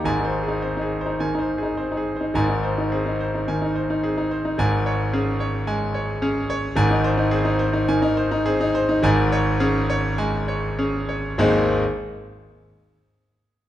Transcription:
0.04 G#1 G#2 G#5
0.20 D#4
0.25 C5
0.43 G#4
0.48 D#4
0.62 C4 C5
0.77 D#4
0.82 G#4
1.01 C5
1.06 D#4
1.20 D#3 G#5
1.35 D#4
1.39 C5
1.58 G#4
1.63 D#4
1.77 C4 C5
1.92 D#4
1.97 G#4
2.16 C5
2.21 D#4
2.34 G#1 G#2 G#5
2.49 D#4
2.63 C5
2.78 D#4
2.92 C4 G#4
3.06 D#4
3.20 C5
3.35 D#4
3.48 D#3 G#5
3.62 D#4
3.76 C5
3.90 D#4
4.03 C4 G#4
4.18 D#4
4.31 C5
4.45 D#4
4.58 G#1 G#2 G#5
4.86 C#5
5.13 C#4 G#4
5.40 C#5
5.67 G#3 G#5
5.94 C#5
6.22 C#4 G#4
6.50 C#5
6.76 G#1 G#2 G#5
6.90 D#4
7.04 C5
7.17 D#4
7.31 C4 G#4
7.45 D#4
7.59 C5
7.73 D#4
7.88 D#3 G#5
8.02 D#4
8.17 C5
8.31 D#4
8.46 C4 G#4
8.61 D#4
8.75 C5
8.89 D#4
9.03 G#1 G#2 G#5
9.32 C#5
9.60 C#4 G#4
9.90 C#5
10.18 G#3 G#5
10.48 C#5
10.79 C#4 G#4
11.09 C#5
11.38 G#1 D#2 G#3 C4 D#4 G#4

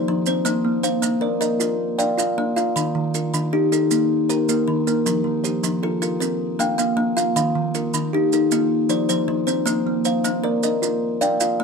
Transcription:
Already playing: F3 C5 D5
0.08 F3
0.26 C4 C5, maracas
0.45 A#3 C5, maracas
0.65 A#3
0.83 C5 F5, maracas
1.02 A#3, maracas
1.21 A#4 D5
1.41 A#4 D#5, maracas
1.60 F4 A#4, maracas
1.98 D5 F5 G5, maracas
2.18 F4 F5, maracas
2.38 A#3
2.56 F4 F5, maracas
2.76 D#3, maracas
2.95 D#3
3.15 F4 A#4, maracas
3.34 D#3, maracas
3.53 D#4 G4
3.72 D#4 A4, maracas
3.91 A#3 D#4, maracas
4.29 G4 A#4 C5, maracas
4.49 A#3 A#4, maracas
4.68 D#3
4.87 A#3 A#4, maracas
5.06 F3 A#4, maracas
5.24 F3
5.44 G4 C5, maracas
5.64 F3, maracas
5.83 F4 A4
6.02 F4 A#4, maracas
6.20 C4 A#4, maracas
6.59 A#3 F5 G5, maracas
6.78 A#3 F5, maracas
6.97 A#3
7.17 F4 F5, maracas
7.36 D#3 F5, maracas
7.55 D#3
7.75 F4 A#4, maracas
7.94 D#3, maracas
8.13 D#4 G4
8.33 D#4 A4, maracas
8.52 A#3 F4, maracas
8.89 F3 C5 D5, maracas
9.09 F3 C5, maracas
9.28 F3
9.47 C4 C5, maracas
9.66 A#3 C5, maracas
9.87 A#3
10.05 C5 F5, maracas
10.24 A#3, maracas
10.43 A#4 D5
10.63 A#4 D#5, maracas
10.82 F4 A#4, maracas
11.21 D5 F5 G5, maracas
11.40 F4 F5, maracas
11.60 A#3

